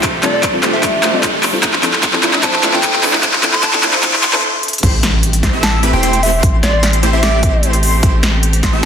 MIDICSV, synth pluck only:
0, 0, Header, 1, 2, 480
1, 0, Start_track
1, 0, Key_signature, 0, "minor"
1, 0, Tempo, 400000
1, 36, Time_signature, 4, 2, 24, 8
1, 10624, End_track
2, 0, Start_track
2, 0, Title_t, "Synth pluck"
2, 0, Program_c, 0, 84
2, 263, Note_on_c, 0, 55, 89
2, 270, Note_on_c, 0, 60, 77
2, 275, Note_on_c, 0, 62, 82
2, 282, Note_on_c, 0, 65, 83
2, 288, Note_on_c, 0, 69, 95
2, 374, Note_off_c, 0, 55, 0
2, 377, Note_off_c, 0, 60, 0
2, 380, Note_off_c, 0, 62, 0
2, 383, Note_off_c, 0, 65, 0
2, 386, Note_off_c, 0, 69, 0
2, 625, Note_on_c, 0, 55, 78
2, 631, Note_on_c, 0, 60, 72
2, 637, Note_on_c, 0, 62, 70
2, 642, Note_on_c, 0, 65, 75
2, 650, Note_on_c, 0, 69, 87
2, 961, Note_off_c, 0, 55, 0
2, 964, Note_off_c, 0, 60, 0
2, 967, Note_off_c, 0, 62, 0
2, 970, Note_off_c, 0, 65, 0
2, 973, Note_off_c, 0, 69, 0
2, 981, Note_on_c, 0, 55, 92
2, 987, Note_on_c, 0, 60, 85
2, 993, Note_on_c, 0, 62, 86
2, 999, Note_on_c, 0, 65, 84
2, 1005, Note_on_c, 0, 74, 103
2, 1093, Note_off_c, 0, 55, 0
2, 1096, Note_off_c, 0, 60, 0
2, 1099, Note_off_c, 0, 62, 0
2, 1102, Note_off_c, 0, 65, 0
2, 1105, Note_off_c, 0, 74, 0
2, 1344, Note_on_c, 0, 55, 101
2, 1350, Note_on_c, 0, 60, 92
2, 1356, Note_on_c, 0, 62, 92
2, 1363, Note_on_c, 0, 65, 92
2, 1369, Note_on_c, 0, 69, 111
2, 1802, Note_off_c, 0, 55, 0
2, 1805, Note_off_c, 0, 60, 0
2, 1808, Note_off_c, 0, 62, 0
2, 1811, Note_off_c, 0, 65, 0
2, 1815, Note_off_c, 0, 69, 0
2, 1824, Note_on_c, 0, 55, 75
2, 1830, Note_on_c, 0, 60, 66
2, 1836, Note_on_c, 0, 62, 68
2, 1842, Note_on_c, 0, 65, 71
2, 1848, Note_on_c, 0, 69, 82
2, 1931, Note_off_c, 0, 55, 0
2, 1934, Note_off_c, 0, 60, 0
2, 1937, Note_off_c, 0, 62, 0
2, 1940, Note_off_c, 0, 65, 0
2, 1943, Note_off_c, 0, 69, 0
2, 2181, Note_on_c, 0, 53, 89
2, 2188, Note_on_c, 0, 60, 81
2, 2194, Note_on_c, 0, 62, 83
2, 2199, Note_on_c, 0, 64, 83
2, 2206, Note_on_c, 0, 69, 101
2, 2293, Note_off_c, 0, 53, 0
2, 2296, Note_off_c, 0, 60, 0
2, 2299, Note_off_c, 0, 62, 0
2, 2302, Note_off_c, 0, 64, 0
2, 2305, Note_off_c, 0, 69, 0
2, 2546, Note_on_c, 0, 53, 80
2, 2552, Note_on_c, 0, 60, 75
2, 2559, Note_on_c, 0, 62, 74
2, 2564, Note_on_c, 0, 64, 73
2, 2571, Note_on_c, 0, 69, 86
2, 2882, Note_off_c, 0, 53, 0
2, 2885, Note_off_c, 0, 60, 0
2, 2888, Note_off_c, 0, 62, 0
2, 2891, Note_off_c, 0, 64, 0
2, 2894, Note_off_c, 0, 69, 0
2, 2905, Note_on_c, 0, 53, 92
2, 2910, Note_on_c, 0, 60, 85
2, 2915, Note_on_c, 0, 62, 87
2, 2923, Note_on_c, 0, 64, 91
2, 2929, Note_on_c, 0, 72, 103
2, 3015, Note_off_c, 0, 53, 0
2, 3017, Note_off_c, 0, 60, 0
2, 3020, Note_off_c, 0, 62, 0
2, 3024, Note_off_c, 0, 64, 0
2, 3027, Note_off_c, 0, 72, 0
2, 3266, Note_on_c, 0, 53, 99
2, 3271, Note_on_c, 0, 60, 93
2, 3278, Note_on_c, 0, 62, 93
2, 3284, Note_on_c, 0, 64, 88
2, 3290, Note_on_c, 0, 69, 112
2, 3723, Note_off_c, 0, 53, 0
2, 3726, Note_off_c, 0, 60, 0
2, 3729, Note_off_c, 0, 62, 0
2, 3732, Note_off_c, 0, 64, 0
2, 3735, Note_off_c, 0, 69, 0
2, 3745, Note_on_c, 0, 53, 72
2, 3752, Note_on_c, 0, 60, 71
2, 3758, Note_on_c, 0, 62, 70
2, 3764, Note_on_c, 0, 64, 70
2, 3769, Note_on_c, 0, 69, 83
2, 3852, Note_off_c, 0, 53, 0
2, 3855, Note_off_c, 0, 60, 0
2, 3858, Note_off_c, 0, 62, 0
2, 3861, Note_off_c, 0, 64, 0
2, 3864, Note_off_c, 0, 69, 0
2, 4101, Note_on_c, 0, 53, 86
2, 4107, Note_on_c, 0, 60, 82
2, 4113, Note_on_c, 0, 62, 82
2, 4118, Note_on_c, 0, 64, 84
2, 4125, Note_on_c, 0, 69, 100
2, 4213, Note_off_c, 0, 53, 0
2, 4216, Note_off_c, 0, 60, 0
2, 4219, Note_off_c, 0, 62, 0
2, 4221, Note_off_c, 0, 64, 0
2, 4225, Note_off_c, 0, 69, 0
2, 4468, Note_on_c, 0, 53, 76
2, 4472, Note_on_c, 0, 60, 74
2, 4479, Note_on_c, 0, 62, 75
2, 4486, Note_on_c, 0, 64, 75
2, 4491, Note_on_c, 0, 69, 93
2, 4803, Note_off_c, 0, 53, 0
2, 4805, Note_off_c, 0, 60, 0
2, 4808, Note_off_c, 0, 62, 0
2, 4812, Note_off_c, 0, 64, 0
2, 4814, Note_off_c, 0, 69, 0
2, 4824, Note_on_c, 0, 53, 95
2, 4830, Note_on_c, 0, 60, 88
2, 4837, Note_on_c, 0, 62, 91
2, 4843, Note_on_c, 0, 64, 86
2, 4849, Note_on_c, 0, 72, 101
2, 4934, Note_off_c, 0, 53, 0
2, 4937, Note_off_c, 0, 60, 0
2, 4941, Note_off_c, 0, 62, 0
2, 4944, Note_off_c, 0, 64, 0
2, 4947, Note_off_c, 0, 72, 0
2, 5188, Note_on_c, 0, 53, 101
2, 5195, Note_on_c, 0, 60, 92
2, 5200, Note_on_c, 0, 62, 92
2, 5206, Note_on_c, 0, 64, 96
2, 5212, Note_on_c, 0, 69, 109
2, 5311, Note_off_c, 0, 53, 0
2, 5314, Note_off_c, 0, 60, 0
2, 5316, Note_off_c, 0, 62, 0
2, 5320, Note_off_c, 0, 64, 0
2, 5323, Note_off_c, 0, 69, 0
2, 10624, End_track
0, 0, End_of_file